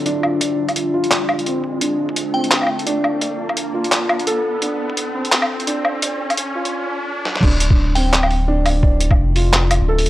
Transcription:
Already playing: C4 D4 F4 A4 E5, riser
0.06 D4, closed hi-hat
0.23 low woodblock
0.41 D5, kick, closed hi-hat
0.68 kick, closed hi-hat, low woodblock
0.76 closed hi-hat
0.94 F4
1.04 closed hi-hat
1.11 clap, closed hi-hat
1.29 low woodblock
1.39 closed hi-hat
1.46 C4, closed hi-hat
1.64 kick
1.81 D4 A5, kick, closed hi-hat
2.09 kick
2.16 closed hi-hat
2.34 C4 G5
2.44 closed hi-hat
2.51 clap, closed hi-hat
2.62 low woodblock
2.63 low woodblock
2.67 low woodblock
2.79 closed hi-hat
2.86 D4, closed hi-hat
3.04 low woodblock
3.21 D5, kick, closed hi-hat
3.49 kick, low woodblock
3.57 closed hi-hat
3.74 F4
3.84 closed hi-hat
3.92 clap, closed hi-hat
4.09 low woodblock
4.19 closed hi-hat
4.27 A4, closed hi-hat
4.62 D4, kick, closed hi-hat
4.90 kick
4.97 closed hi-hat
5.15 C4
5.25 closed hi-hat
5.32 clap, closed hi-hat
5.42 low woodblock
5.60 closed hi-hat
5.67 D4, closed hi-hat
5.85 low woodblock
6.02 D5, kick, closed hi-hat
6.30 kick, closed hi-hat, low woodblock
6.37 closed hi-hat
6.55 F4
6.65 closed hi-hat
7.25 snare
7.36 snare
7.43 D1 D4 F4 E5, kick, crash
7.60 closed hi-hat
7.70 kick
7.95 C4 G5, open hi-hat
8.13 clap, closed hi-hat
8.23 low woodblock
8.31 open hi-hat
8.48 D4
8.66 open hi-hat, low woodblock
8.83 D1 D5, kick
9.01 closed hi-hat
9.11 kick, low woodblock
9.18 F1
9.36 F4, open hi-hat
9.53 clap, closed hi-hat
9.71 closed hi-hat, low woodblock
9.81 D1
9.88 A4
9.99 open hi-hat
10.06 closed hi-hat

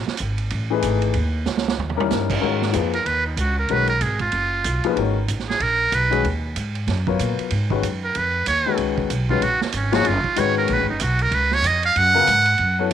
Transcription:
0.07 muted upright bass stroke, snare
0.17 G#1, hi-hat pedal, ride
0.38 ride
0.50 A1, ride
0.70 E3 A3 D#4 G#4 B4
0.82 G#1, hi-hat pedal, ride
1.02 ride
1.14 D#2, ride
1.45 C#2, snare, hi-hat pedal
1.57 snare
1.68 snare
1.78 D#2, floor tom
1.90 floor tom
1.96 G3 C#4 D#4 E4 A#4, floor tom
2.10 G2, snare, hi-hat pedal
2.30 kick, crash
2.40 G#2 D#3 G#3 C#4 F#4 A#4
2.62 snare
2.73 F2 F3 A#3 D#4 G#4 B4, hi-hat pedal, ride
2.93 A#4, ride
3.06 D#2 B4, ride
3.27 D#4
3.37 C#2 F#4, hi-hat pedal, ride
3.59 A#4
3.68 B1 D#3 G#3 C#4 F#4 A#4 B4, ride
3.87 A#4, ride
4.01 G#1 G#4, hi-hat pedal, ride
4.19 F4, kick, ride
4.32 F#1, ride
4.64 B1, hi-hat pedal, ride
4.84 F3 A#3 D#4 G#4 B4, muted upright bass stroke, ride
4.96 G#1 D#3 G#3 C#4 F#4 A#4, ride
5.28 A1, hi-hat pedal, ride
5.39 snare
5.49 G#4, snare
5.60 A#1 A#4, ride
5.92 B1 B4, hi-hat pedal, ride
6.10 D#3 G#3 C#4 F#4 G#4, ride
6.24 D#2, ride
6.56 G#2, hi-hat pedal, ride
6.75 ride
6.87 F#2, snare, ride
7.07 F#3 B3 F4 A#4 C#5, kick
7.19 A#2, hi-hat pedal, ride
7.39 muted upright bass stroke, ride
7.50 G#2, ride
7.70 D#3 G#3 C#4 F#4 B4, kick
7.82 F#2, hi-hat pedal, ride
8.04 A#4
8.15 F2 B4, ride
8.46 D#2 C#5, hi-hat pedal, ride
8.66 D#3 G#3 C#4 F#4 B4
8.77 C#2, ride
8.98 kick
9.10 B1, hi-hat pedal, ride
9.29 D#3 G#3 C#4 F4 F#4 B4, kick
9.42 A#1 F#4, ride
9.61 A#3, muted upright bass stroke, snare
9.72 G#1 C#4, hi-hat pedal, ride
9.92 F3 A#3 D#4 F#4 G#4 C#5, snare, ride
10.05 F#1 F4, ride
10.24 muted upright bass stroke, kick
10.36 G#1 D#3 G#3 C#4 F#4 B4 C#5, hi-hat pedal, ride
10.58 A#4
10.68 A#1, ride
10.73 B4
10.80 G#1
10.90 F#1 D#4
11.00 B1 F#4, hi-hat pedal, ride
11.19 A#4, ride
11.31 C#2 B4, ride
11.51 C#5, snare
11.62 F2, hi-hat pedal, ride
11.67 D#5
11.83 F5, ride
11.96 F#2 F#5, ride
12.14 C#3 F#3 B3 F4 A#4
12.27 G#2, hi-hat pedal, ride
12.46 ride
12.58 F#2, ride
12.79 F#3 B3 E4 A4 C#5

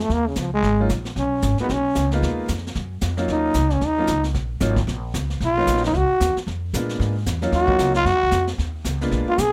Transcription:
0.02 A3
0.09 D#2, brush sweep, kick, snare
0.13 A#3
0.27 C#3
0.35 C#2 F3, kick, snare, hi-hat pedal
0.54 G#3
0.63 G#1, brush sweep, kick, snare
0.80 F#3 A#3 C#4 D#4 F4
0.89 A#1, kick, snare, hi-hat pedal
1.05 snare
1.16 B1 C#4, brush sweep, kick, snare
1.42 G#1, kick, snare, hi-hat pedal
1.58 G#3 A#3 B3 D#4 F#4, muted upright bass stroke, snare
1.69 B1 C#4, brush sweep, kick, snare
1.95 C#2, kick, snare, hi-hat pedal
2.11 G#3 A#3 B3 D#4 F4, snare
2.22 D#2, brush sweep, kick, snare
2.48 F2, kick, snare, hi-hat pedal
2.58 snare
2.67 snare
2.75 F#2, brush sweep, kick, snare
3.01 F2, kick, snare, hi-hat pedal
3.17 F#3 A#3 C#4 D#4 F4, snare
3.28 D#2 D#4, brush sweep, kick, snare
3.54 C#2, kick, snare, hi-hat pedal
3.70 C#4, snare
3.81 D#2, brush sweep, kick, snare
3.86 D#4
3.98 F#3 A#3 C#4 D#4 F4
4.07 C#2, kick, snare, hi-hat pedal
4.24 snare
4.34 A#1, brush sweep, kick, snare
4.60 G#1 F#3 A#3 C#4 D#4 F4, kick, snare, hi-hat pedal
4.76 kick, snare
4.87 A#1, brush sweep, kick, snare
5.14 C#2, kick, snare, hi-hat pedal
5.30 snare
5.40 B1, brush sweep, kick, snare
5.45 F4
5.57 F#3 A#3 B3 C#4 D#4
5.67 A#1, kick, snare, hi-hat pedal
5.77 snare
5.84 snare
5.85 D#4, snare
5.94 C#2 F#4, brush sweep, kick, snare
6.10 muted upright bass stroke
6.20 D#2, kick, snare, hi-hat pedal
6.36 muted upright bass stroke, snare
6.47 F2, brush sweep, kick, snare
6.73 A#2 G#3 A#3 B3 D4 F4, kick, snare, hi-hat pedal
6.89 snare
7.00 G#2, brush sweep, kick, snare
7.26 E2, kick, snare, hi-hat pedal
7.42 F#3 A#3 C#4 D#4 F4, snare
7.52 D#2 F#4, brush sweep, kick, snare
7.67 F#3 A#3 C#4 D#4 F4, kick
7.78 C#2, kick, snare, hi-hat pedal
7.94 F4, snare
8.05 F#2 F#4, brush sweep, kick, snare
8.13 D#2
8.23 C#2
8.31 F2, kick, snare, hi-hat pedal
8.47 snare
8.58 D#2, brush sweep, kick, snare
8.85 C#2, kick, snare, hi-hat pedal
9.01 G#3 A#3 B3 D4 F4, snare
9.11 A#1, brush sweep, kick, snare
9.27 F4, muted upright bass stroke
9.38 B1 G#4, kick, snare, hi-hat pedal

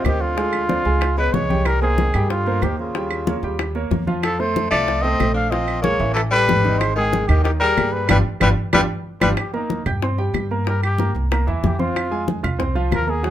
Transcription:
0.04 D2 D#3 C4 G4 C5 D#5, high bongo, low bongo, high conga, claves
0.21 D3 F4, high conga
0.37 G#3 G#4 G#5, high bongo, high conga
0.53 high bongo, high conga, claves
0.69 C4 C5 D5, high bongo, high conga
0.85 C#2 G#3 G#4 G#5, high bongo, high conga
1.01 high bongo, high conga, claves
1.17 G#3 B3 B4 C#5, high bongo, high conga
1.33 C2 G#3 C#5, high bongo, low bongo, high conga
1.50 G3 G4 G5, high conga
1.65 G3 A#4, high bongo, high conga, claves
1.82 D#3 A#3 G#4 A#4 C5, high bongo, high conga
1.98 high bongo, high conga
2.14 G2 G3 G4 G5, high bongo, high conga, claves
2.30 D3 F4, high bongo, high conga
2.46 A#3 A#4 C5, high bongo, high conga
2.62 D#2 D#3 A#3 G4 A#4 C5, high bongo, low bongo, high conga, claves
2.79 C#3 F4, high conga
2.95 G3 G4 G5, high bongo, high conga
3.11 high bongo, high conga, claves
3.27 A#3 A#4 C#5, high bongo, high conga
3.43 D#2 G3 G4 G5, high bongo, high conga
3.59 high bongo, high conga, claves
3.75 A#3 A#4 C#5, high bongo, high conga
3.91 F2, high bongo, low bongo, high conga
4.07 F3 F4 F5, high conga
4.23 F3 A4, high bongo, high conga, claves
4.39 A3 A4 C5, high bongo, high conga
4.56 high bongo, high conga
4.71 C2 F3 A3 F4 D5 F5, high bongo, high conga, claves
4.88 high bongo, high conga
5.01 A3 C4 A4 C5 D#5, high bongo, high conga
5.20 A#1 A3 A4 C5, high bongo, low bongo, high conga, claves
5.34 D4 F5, high conga
5.50 F3 C4 F4 D#5 F5, high bongo, high conga
5.68 high bongo, high conga, claves
5.82 G#3 A#3 G#4 A#4 C#5, high bongo, high conga
5.99 A1 E3 E4 E5, high bongo, high conga
6.14 E3 A4, high bongo, high conga, claves
6.31 G3 G4 A4 B4, high bongo, high conga
6.48 G#1, high bongo, low bongo, high conga
6.64 D#3 D#4 D#5, high conga
6.78 G#3 C5, high bongo, high conga, claves
6.95 D#3 G#3 G#4 G5, high bongo, high conga
7.13 high bongo, high conga
7.27 D#2 D#3 D#4 G4 D#5, high bongo, high conga, claves
7.44 D#3 G4, high bongo, high conga
7.60 G3 G4 G#4 A#4, high bongo, high conga
7.77 G2 A#3 G4 G#4, high bongo, low bongo, high conga, claves
7.92 G3 B4, high conga
8.09 G1 G3 D4 F4 G4 B4, high bongo, high conga, claves
8.40 G1 G3 D4 F4 G4 B4, high bongo, high conga, claves
8.73 G1 G3 D4 F4 G4 B4, high bongo, high conga, claves
9.21 G1 G3 D4 F4 G4 B4, high bongo, high conga, claves
9.37 G4, high bongo, high conga, claves
9.53 A#3 D#4 A#4 A#5, high bongo, high conga
9.70 high bongo, high conga
9.86 G2 G4 G5 G6, high bongo, high conga, low conga, claves
10.02 C4 C5 C6, high bongo, high conga
10.18 G3 G4 G5, high bongo, high conga
10.34 G2, high bongo, low bongo, high conga, claves
10.51 A#3 A#4 A#5, high conga
10.66 G3 G4 A#4 G5, high bongo, high conga
10.83 G4, high bongo, high conga, claves
10.98 A#3 A#4 A#5, high bongo, high conga
11.15 C2, high bongo, high conga
11.31 A#3 A#4 A#5, high bongo, high conga, claves
11.47 E2 E3 E4 E5, high bongo, high conga
11.63 F2 G4, high bongo, low bongo, high conga
11.79 C4 F4 C5 C6, high conga
11.96 high bongo, high conga, claves
12.11 G#3 G#4 G#5, high bongo, high conga
12.28 high bongo, high conga
12.43 C2 F4 F5 F6, high bongo, high conga, low conga, claves
12.58 C4 C5 C6, high bongo, high conga, low conga
12.75 F3 F4 F5, high bongo, high conga
12.91 D#2 A#4, high bongo, low bongo, high conga, claves
13.07 A#3 G#4 A#4 A#5, high conga
13.23 F#3 F#4 F#5, high bongo, high conga

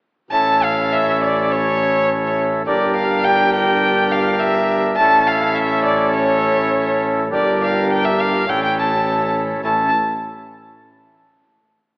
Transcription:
0.31 A1 C#4 E4 A4 A5
0.63 F5
0.92 E5
1.23 D5
1.51 C#5
2.65 G1 D4 G4 A#4 D5
2.95 F5
3.24 G5
3.54 G5
4.11 F5
4.39 E5
4.96 A1 C#4 A5
5.00 E4 A4
5.27 F5
5.55 E5
5.84 D5
6.15 C#5
7.31 G1 D4 G4 A#4 D5
7.63 F5
7.92 G5
8.04 E5
8.20 F5
8.46 A1 C#4 E4 A4 G5
8.63 G5
8.78 A5
9.62 A1 C#4 E4 A4 A5

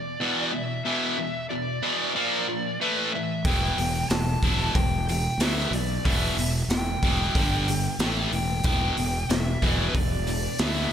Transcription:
Already playing: E2 B2 D5
0.20 E2 B2 E3
0.52 E2 B2 E5
0.85 E2 B2 E3 E5
1.18 E2 B2
1.49 E2 B2 D5
1.83 E2 B2 E3
2.15 A#2 F3 A#3 D5
2.48 A#2 F3
2.81 A2 E3 A3 B4
3.12 A2 E3 E5
3.45 E1 E2 B2 E3 G5, kick, open hi-hat
3.77 E1 E2 B2, open hi-hat
4.10 E1 E2 B2 A5, snare, open hi-hat
4.43 E1 E2 B2 E3, kick, open hi-hat
4.74 E1 E2 B2 G5, kick, open hi-hat
5.09 E2 B2 G5, open hi-hat
5.38 D2 E2 B2 E3, snare, open hi-hat
5.43 E5
5.58 snare
5.71 B1 E2 B2, open hi-hat
5.75 D5
6.05 E1 E2 B2 E3 E5, kick, open hi-hat
6.37 E1 E2 B2 E5, open hi-hat
6.68 E1 E2 B2 G5, snare, open hi-hat
7.03 E1 E2 B2 E3, kick, open hi-hat
7.35 G1 G2 D3 G3, kick, open hi-hat
7.68 G2 D3, open hi-hat
7.99 A1 A2 E3 A3, snare, open hi-hat
8.31 E1 A2 E3 G5, open hi-hat
8.64 E1 E2 B2 E3 G5, kick, open hi-hat
8.97 E1 E2 B2, open hi-hat
9.29 E1 E2 B2 E5, snare, open hi-hat
9.62 E1 E2 B2 E3, kick, open hi-hat
9.71 D5
9.89 B4
9.94 E1 E2 B2 D5, kick, open hi-hat
10.27 E2 B2, open hi-hat
10.31 D5
10.59 D2 E2 B2 E3 E5, snare, open hi-hat
10.76 snare

